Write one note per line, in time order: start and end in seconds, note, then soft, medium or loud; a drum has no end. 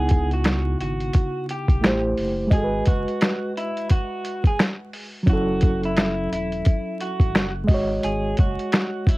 0.00 0.75 C#2 loud
0.00 1.76 C#3 medium
0.00 1.78 B3 medium
0.00 1.79 D#4 medium
0.00 1.80 E4 medium
0.00 0.29 G#4 loud
0.00 1.82 F#5 medium
0.09 kick medium
0.09 closed hi-hat medium
0.31 0.77 F#4 medium
0.31 closed hi-hat soft
0.44 finger snap medium
0.44 snare loud
0.44 closed hi-hat medium
0.80 1.10 G#1 medium
0.80 1.45 F#4 medium
0.80 closed hi-hat medium
1.00 closed hi-hat soft
1.13 kick medium
1.13 closed hi-hat medium
1.49 2.02 G4 medium
1.49 closed hi-hat medium
1.68 1.81 B1 medium
1.68 kick medium
1.68 closed hi-hat soft
1.81 2.14 A1 loud
1.81 2.51 A3 medium
1.81 2.51 E4 medium
1.81 2.52 G4 medium
1.81 finger snap medium
1.81 snare loud
1.81 closed hi-hat medium
1.86 2.53 C5 medium
2.17 2.48 F#1 loud
2.17 open hi-hat soft
2.47 5.21 G#3 medium
2.47 5.23 D#5 medium
2.51 2.82 G#1 loud
2.51 5.25 F#4 medium
2.51 2.83 G#4 loud
2.51 kick loud
2.51 closed hi-hat medium
2.57 2.62 A4 medium
2.64 5.30 B4 medium
2.85 3.06 F#1 medium
2.85 3.52 F#4 medium
2.85 kick medium
2.85 closed hi-hat medium
3.08 closed hi-hat soft
3.21 finger snap medium
3.21 snare loud
3.21 closed hi-hat medium
3.57 3.87 E4 medium
3.57 closed hi-hat medium
3.77 closed hi-hat soft
3.90 4.43 F#4 medium
3.90 kick medium
3.90 closed hi-hat medium
4.25 closed hi-hat medium
4.44 4.58 G#4 medium
4.44 kick medium
4.44 closed hi-hat soft
4.59 finger snap medium
4.59 snare loud
4.59 closed hi-hat medium
4.93 open hi-hat soft
5.23 7.63 F#3 medium
5.23 7.64 C#4 medium
5.27 6.27 F#1 loud
5.27 7.66 E4 medium
5.27 5.81 F#4 loud
5.27 kick loud
5.27 closed hi-hat medium
5.33 7.68 A4 medium
5.61 kick medium
5.61 closed hi-hat medium
5.83 6.29 E4 medium
5.83 closed hi-hat soft
5.96 finger snap medium
5.96 snare loud
5.96 closed hi-hat medium
6.32 6.62 E1 medium
6.32 6.97 E4 medium
6.32 closed hi-hat medium
6.52 closed hi-hat soft
6.65 kick loud
6.65 closed hi-hat medium
7.00 7.53 F#4 medium
7.00 closed hi-hat medium
7.20 7.37 G#1 medium
7.20 kick medium
7.20 closed hi-hat soft
7.35 7.65 F#1 loud
7.35 finger snap loud
7.35 snare loud
7.35 closed hi-hat medium
7.64 9.18 G#3 medium
7.64 9.18 D#5 medium
7.69 7.99 G#1 medium
7.69 9.18 F#4 medium
7.69 kick loud
7.69 open hi-hat soft
7.74 9.18 C#5 medium
8.03 8.34 G#1 loud
8.03 8.35 G#4 loud
8.03 closed hi-hat medium
8.37 8.57 F#1 medium
8.37 9.08 F#4 medium
8.37 kick medium
8.37 closed hi-hat medium
8.59 closed hi-hat soft
8.72 finger snap medium
8.72 snare loud
8.72 closed hi-hat medium
9.07 9.18 E4 medium
9.07 kick medium
9.07 closed hi-hat medium